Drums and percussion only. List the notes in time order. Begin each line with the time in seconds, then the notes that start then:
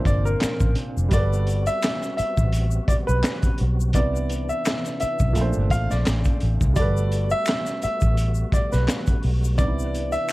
0.05 kick, closed hi-hat, shaker
0.26 shaker
0.41 finger snap, snare, clap, closed hi-hat, shaker
0.60 kick, shaker
0.75 closed hi-hat
0.98 shaker
1.11 kick, closed hi-hat, shaker
1.33 shaker
1.47 closed hi-hat, shaker
1.66 closed hi-hat, shaker
1.82 finger snap, snare, clap, closed hi-hat, shaker
2.01 snare, shaker
2.18 closed hi-hat, shaker
2.37 kick, shaker
2.52 closed hi-hat, shaker
2.71 shaker
2.88 kick, closed hi-hat, shaker
3.09 shaker
3.23 finger snap, snare, clap, closed hi-hat, shaker
3.42 kick, closed hi-hat, shaker
3.58 closed hi-hat
3.80 shaker
3.93 kick, closed hi-hat, shaker
4.16 shaker
4.29 closed hi-hat, shaker
4.49 shaker
4.65 finger snap, snare, clap, closed hi-hat, shaker
4.83 snare, shaker
5.00 closed hi-hat, shaker
5.19 kick, shaker
5.35 closed hi-hat, shaker
5.53 shaker
5.70 kick, closed hi-hat, shaker
5.90 snare, shaker
6.06 finger snap, snare, clap, closed hi-hat, shaker
6.24 kick, closed hi-hat, shaker
6.40 closed hi-hat
6.61 kick, shaker
6.76 kick, closed hi-hat, shaker
6.97 shaker
7.12 closed hi-hat, shaker
7.30 shaker
7.46 finger snap, snare, clap, closed hi-hat, shaker
7.65 snare, shaker
7.82 closed hi-hat, shaker
8.01 kick, shaker
8.17 closed hi-hat, shaker
8.35 shaker
8.52 kick, closed hi-hat, shaker
8.72 snare, shaker
8.88 finger snap, snare, clap, closed hi-hat, shaker
9.07 kick, closed hi-hat, shaker
9.23 open hi-hat
9.44 shaker
9.58 kick, closed hi-hat, shaker
9.79 shaker
9.95 closed hi-hat, shaker
10.12 closed hi-hat, shaker
10.29 finger snap, shaker